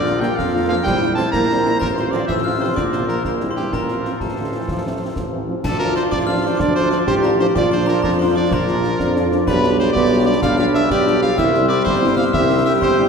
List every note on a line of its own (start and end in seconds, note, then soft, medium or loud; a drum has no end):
0.00 0.29 A#1 medium
0.00 0.22 D3 loud
0.00 0.85 F4 medium
0.00 0.85 A#4 medium
0.00 0.22 D5 loud
0.00 0.19 D6 loud
0.05 0.11 A#3 medium
0.05 0.11 D4 medium
0.05 0.11 F4 medium
0.05 snare medium
0.20 0.26 F3 medium
0.20 0.37 G3 loud
0.20 0.26 A#3 loud
0.20 0.27 A#3 medium
0.20 0.27 D4 medium
0.20 0.27 F4 medium
0.20 0.38 G5 loud
0.20 0.36 G6 medium
0.20 snare medium
0.36 0.77 F2 medium
0.36 0.67 F3 loud
0.36 0.68 F5 loud
0.36 0.68 F6 medium
0.36 concert bass drum medium
0.36 snare medium
0.53 0.59 A#3 medium
0.53 0.59 D4 medium
0.53 0.59 F4 medium
0.67 0.73 F3 loud
0.67 0.77 F3 loud
0.67 0.73 A#3 loud
0.67 0.75 A#3 medium
0.67 0.75 D4 medium
0.67 0.75 F4 medium
0.67 0.76 F5 loud
0.67 0.85 F6 loud
0.83 1.25 A#1 medium
0.83 1.15 G3 loud
0.83 1.77 E4 medium
0.83 2.77 C5 loud
0.83 1.14 G5 loud
0.83 1.15 G6 loud
0.83 concert bass drum medium
0.83 snare medium
1.01 1.07 G3 medium
1.01 1.07 C4 medium
1.01 1.07 E4 medium
1.01 snare medium
1.15 1.22 E3 loud
1.15 1.23 G3 medium
1.15 1.24 A3 loud
1.15 1.22 C4 medium
1.15 1.23 C4 medium
1.15 1.23 E4 medium
1.15 1.31 A5 loud
1.15 1.33 A6 loud
1.15 snare medium
1.32 1.73 A#1 medium
1.32 1.78 A#3 loud
1.32 1.77 A#5 loud
1.32 1.78 A#6 loud
1.32 concert bass drum medium
1.32 snare medium
1.50 1.55 G3 medium
1.50 1.56 C4 medium
1.50 1.55 E4 medium
1.50 snare medium
1.63 1.69 E3 medium
1.63 1.72 G3 medium
1.63 1.70 C4 medium
1.63 1.72 C4 medium
1.63 1.72 E4 medium
1.63 snare medium
1.79 2.21 A1 medium
1.79 1.87 A#2 loud
1.79 3.25 F4 medium
1.79 1.88 A#4 loud
1.79 1.95 A#5 loud
1.79 concert bass drum medium
1.79 snare medium
1.79 crash soft
1.96 2.04 C3 medium
1.96 2.04 F3 medium
1.96 2.04 C4 medium
1.96 2.04 F4 medium
1.96 2.12 C5 loud
1.96 2.11 C6 medium
1.96 snare medium
2.11 2.21 D3 loud
2.11 2.18 F3 medium
2.11 2.19 F3 medium
2.11 2.18 C4 medium
2.11 2.19 C4 medium
2.11 2.19 F4 medium
2.11 2.27 D5 loud
2.11 2.28 D6 medium
2.11 snare medium
2.27 2.69 A1 medium
2.27 2.43 E3 loud
2.27 2.35 E5 loud
2.27 2.44 E6 loud
2.27 concert bass drum medium
2.27 snare medium
2.44 2.51 F3 medium
2.44 2.51 C4 medium
2.44 2.51 F4 medium
2.44 2.51 F5 medium
2.44 2.59 F6 loud
2.59 2.77 C3 loud
2.59 2.66 F3 medium
2.59 2.68 F3 medium
2.59 2.66 C4 medium
2.59 2.68 C4 medium
2.59 2.66 F4 medium
2.59 2.75 C5 loud
2.59 2.76 C6 medium
2.76 3.17 A#1 medium
2.76 2.92 D3 loud
2.76 3.25 A#4 medium
2.76 2.83 D5 loud
2.76 2.91 D6 loud
2.76 concert bass drum medium
2.76 snare medium
2.92 3.06 C3 medium
2.92 2.99 F3 medium
2.92 2.99 A#3 medium
2.92 2.99 F4 medium
2.92 3.07 C5 loud
2.92 3.08 C6 medium
2.92 snare medium
3.07 3.15 A#2 medium
3.07 3.15 F3 medium
3.07 3.15 A#3 medium
3.07 3.15 F4 medium
3.07 3.23 A#4 medium
3.07 3.24 A#5 medium
3.07 snare medium
3.25 3.65 A#1 medium
3.25 3.47 A#2 medium
3.25 3.73 E4 medium
3.25 3.36 A#4 medium
3.25 3.69 C5 medium
3.25 3.48 A#5 medium
3.25 concert bass drum medium
3.25 snare medium
3.40 3.46 G3 medium
3.40 3.46 C4 medium
3.40 3.46 E4 medium
3.40 snare medium
3.49 3.52 C3 medium
3.49 3.53 C5 medium
3.49 3.57 C6 medium
3.56 3.71 G2 medium
3.56 3.64 E3 medium
3.56 3.63 G3 medium
3.56 3.63 C4 medium
3.56 3.63 E4 medium
3.56 3.75 G4 loud
3.56 3.72 G5 medium
3.56 snare soft
3.72 4.13 A1 medium
3.72 4.17 A#2 medium
3.72 5.44 F4 medium
3.72 4.22 A#4 loud
3.72 5.44 C5 medium
3.72 4.18 A#5 medium
3.72 concert bass drum medium
3.72 snare medium
3.88 3.95 F3 medium
3.88 3.95 C4 medium
3.88 3.95 F4 medium
3.88 snare soft
4.04 4.10 F3 medium
4.04 4.11 F3 medium
4.04 4.10 C4 medium
4.04 4.11 C4 medium
4.04 4.11 F4 medium
4.04 snare medium
4.20 4.56 A1 medium
4.20 5.44 A2 medium
4.20 4.27 C3 medium
4.20 5.48 A4 medium
4.20 5.45 A5 medium
4.20 concert bass drum medium
4.20 snare medium
4.36 4.51 D3 medium
4.36 4.43 F3 medium
4.36 4.42 C4 medium
4.36 4.43 F4 medium
4.51 4.67 E3 medium
4.51 4.57 F3 medium
4.51 4.57 C4 medium
4.51 4.57 F4 medium
4.68 5.08 A1 medium
4.68 4.84 F3 medium
4.68 concert bass drum medium
4.68 snare medium
4.84 4.90 F3 medium
4.84 5.00 A3 medium
4.84 4.90 C4 medium
4.84 4.90 F4 medium
5.00 5.09 E3 medium
5.00 5.06 F3 medium
5.00 5.06 C4 medium
5.00 5.06 F4 medium
5.16 5.56 A1 medium
5.16 5.32 F3 medium
5.16 concert bass drum medium
5.16 snare medium
5.31 5.39 E3 medium
5.31 5.37 F3 medium
5.31 5.37 C4 medium
5.31 5.37 F4 medium
5.47 5.54 F3 medium
5.47 5.55 F3 medium
5.47 5.53 C4 medium
5.47 5.54 F4 medium
5.62 6.04 D2 medium
5.62 7.50 F3 loud
5.62 7.51 D4 loud
5.62 6.62 F4 loud
5.62 6.09 F4 medium
5.62 5.78 A4 loud
5.62 6.09 D5 medium
5.62 5.79 A5 loud
5.62 concert bass drum loud
5.62 snare medium
5.62 crash medium
5.79 5.86 F3 medium
5.79 5.86 D4 medium
5.79 5.86 F4 medium
5.79 5.94 A#4 loud
5.79 5.95 A#5 medium
5.79 snare medium
5.96 6.02 F3 medium
5.96 6.02 D4 medium
5.96 6.02 F4 medium
5.96 6.03 C5 loud
5.96 6.11 C6 loud
5.96 snare medium
6.11 6.52 A1 medium
6.11 6.56 F4 medium
6.11 6.19 D5 loud
6.11 6.57 D5 medium
6.11 6.27 D6 loud
6.11 concert bass drum medium
6.11 snare medium
6.27 6.34 F3 medium
6.27 6.34 D4 medium
6.27 6.34 F4 medium
6.27 6.47 F5 loud
6.27 6.42 F6 loud
6.43 6.51 F3 medium
6.43 6.51 D4 medium
6.43 6.51 F4 medium
6.43 6.62 C5 loud
6.43 6.58 C6 loud
6.57 7.00 D2 medium
6.57 7.06 D4 loud
6.57 7.51 F4 loud
6.57 7.51 D5 medium
6.57 6.75 D5 loud
6.57 6.73 D6 loud
6.57 concert bass drum loud
6.57 snare medium
6.75 6.82 F3 medium
6.75 6.82 D4 medium
6.75 6.82 F4 medium
6.75 6.90 C5 loud
6.75 6.91 C6 loud
6.75 snare medium
6.91 6.98 F3 medium
6.91 6.98 D4 medium
6.91 6.98 F4 medium
6.91 6.99 D5 loud
6.91 7.06 D6 loud
6.91 snare medium
7.07 7.47 A1 medium
7.07 7.57 G4 loud
7.07 7.15 C5 loud
7.07 7.23 C6 loud
7.07 concert bass drum medium
7.07 snare medium
7.23 7.29 F3 medium
7.23 7.29 D4 medium
7.23 7.29 F4 loud
7.23 7.32 A#4 loud
7.23 7.38 A#5 loud
7.23 snare medium
7.39 7.45 F3 medium
7.39 7.45 D4 medium
7.39 7.45 F4 medium
7.39 7.47 C5 loud
7.39 7.55 C6 medium
7.39 snare medium
7.55 7.95 A#1 loud
7.55 9.43 F3 loud
7.55 9.43 D4 loud
7.55 8.98 F4 loud
7.55 8.01 F4 medium
7.55 8.00 D5 loud
7.55 7.71 D5 loud
7.55 7.70 D6 loud
7.55 concert bass drum loud
7.55 snare medium
7.55 crash soft
7.71 7.77 F3 medium
7.71 7.77 D4 medium
7.71 7.77 F4 medium
7.71 7.87 C5 loud
7.71 7.86 C6 loud
7.71 snare medium
7.86 7.93 F3 medium
7.86 7.92 D4 medium
7.86 7.93 F4 medium
7.86 8.03 A#4 loud
7.86 8.01 A#5 loud
7.86 snare medium
8.02 8.43 F2 medium
8.02 8.48 F4 medium
8.02 8.11 A#4 loud
8.02 8.48 D5 medium
8.02 8.18 A#5 medium
8.02 concert bass drum medium
8.02 snare medium
8.19 8.25 F3 medium
8.19 8.25 D4 medium
8.19 8.25 F4 medium
8.19 8.35 C5 medium
8.19 8.34 C6 loud
8.35 8.41 F3 medium
8.35 8.41 D4 medium
8.35 8.41 F4 medium
8.35 8.55 D5 loud
8.35 8.50 D6 medium
8.51 8.91 A#1 medium
8.51 9.43 F4 loud
8.51 9.32 A#4 loud
8.51 9.43 D5 loud
8.51 9.28 A#5 loud
8.51 concert bass drum loud
8.51 snare loud
8.67 8.73 F3 medium
8.67 8.74 D4 medium
8.67 8.74 F4 medium
8.67 snare medium
8.84 8.89 F3 medium
8.84 8.90 D4 medium
8.84 8.90 F4 medium
8.84 snare medium
8.99 9.39 F2 loud
8.99 9.43 D4 loud
8.99 concert bass drum medium
8.99 snare medium
9.16 9.22 F3 medium
9.16 9.22 D4 medium
9.16 9.22 F4 medium
9.16 snare medium
9.31 9.37 F3 medium
9.31 9.37 D4 medium
9.31 9.36 F4 medium
9.31 snare medium
9.46 9.87 B1 loud
9.46 11.34 G3 medium
9.46 9.91 D4 loud
9.46 11.34 D4 medium
9.46 9.92 G4 loud
9.46 9.77 B4 loud
9.46 9.92 D5 medium
9.46 9.77 B5 loud
9.46 concert bass drum loud
9.46 snare medium
9.46 crash soft
9.63 9.69 G3 medium
9.63 9.69 D4 medium
9.63 9.69 F4 medium
9.63 snare medium
9.77 9.84 G3 medium
9.77 9.83 D4 medium
9.77 9.84 F4 medium
9.77 9.92 C5 loud
9.77 9.94 C6 loud
9.77 snare medium
9.93 10.34 B1 loud
9.93 10.39 B3 loud
9.93 10.40 G4 loud
9.93 10.23 D5 loud
9.93 10.39 D5 medium
9.93 10.25 D6 loud
9.93 concert bass drum medium
9.93 snare medium
10.11 10.17 G3 medium
10.11 10.17 D4 medium
10.11 10.17 F4 medium
10.26 10.32 G3 medium
10.26 10.32 D4 loud
10.26 10.33 F4 medium
10.26 10.41 D5 loud
10.26 10.43 D6 medium
10.41 10.82 B1 loud
10.41 10.86 D4 loud
10.41 10.88 G4 loud
10.41 10.88 D5 loud
10.41 10.57 F5 loud
10.41 10.56 F6 loud
10.41 concert bass drum loud
10.41 snare loud
10.57 10.63 G3 loud
10.57 10.63 D4 medium
10.57 10.63 F4 medium
10.57 10.66 F5 loud
10.57 10.73 F6 loud
10.57 snare medium
10.73 10.79 G3 medium
10.73 10.79 D4 medium
10.73 10.79 F4 medium
10.73 10.89 E5 loud
10.73 10.90 E6 loud
10.73 snare medium
10.90 11.30 B1 medium
10.90 11.35 G4 loud
10.90 11.35 D5 loud
10.90 11.21 D5 loud
10.90 11.21 D6 loud
10.90 concert bass drum medium
10.90 snare medium
11.05 11.11 G3 medium
11.05 11.11 D4 loud
11.05 11.12 F4 medium
11.05 snare medium
11.22 11.28 G3 medium
11.22 11.28 D4 medium
11.22 11.28 F4 medium
11.22 11.40 F5 loud
11.22 11.37 F6 loud
11.22 snare medium
11.35 11.78 C2 loud
11.35 13.09 G3 loud
11.35 13.09 C4 loud
11.35 12.02 E4 loud
11.35 11.82 G4 medium
11.35 11.85 C5 loud
11.35 11.68 E5 loud
11.35 11.68 E6 loud
11.35 concert bass drum medium
11.35 snare medium
11.35 crash soft
11.54 11.60 G3 loud
11.54 11.59 C4 medium
11.54 11.60 E4 medium
11.54 snare medium
11.68 11.75 G3 medium
11.68 11.75 C4 medium
11.68 11.75 E4 medium
11.68 11.84 D5 loud
11.68 11.85 D6 loud
11.68 snare medium
11.85 12.25 G1 loud
11.85 12.31 G4 medium
11.85 12.15 C5 loud
11.85 12.31 C5 medium
11.85 12.15 C6 loud
11.85 concert bass drum medium
11.85 snare medium
12.01 12.07 G3 medium
12.01 12.08 C4 loud
12.01 12.08 E4 loud
12.17 12.24 G3 medium
12.17 12.24 C4 medium
12.17 12.24 E4 medium
12.17 12.25 F5 loud
12.17 12.32 F6 loud
12.33 12.74 C2 loud
12.33 12.69 G4 loud
12.33 13.09 G4 loud
12.33 12.69 C5 loud
12.33 12.63 E5 loud
12.33 12.63 E6 loud
12.33 concert bass drum loud
12.33 snare medium
12.50 12.55 G3 medium
12.50 12.56 C4 medium
12.50 12.56 E4 medium
12.65 12.71 G3 medium
12.65 12.71 C4 medium
12.65 12.71 E4 medium
12.65 12.73 E5 loud
12.65 12.81 E6 loud
12.81 13.09 G1 medium
12.81 13.09 G4 loud
12.81 13.09 C5 loud
12.81 13.09 C6 loud
12.81 concert bass drum medium
12.81 snare medium
12.98 13.04 G3 medium
12.98 13.04 C4 loud
12.98 13.04 E4 loud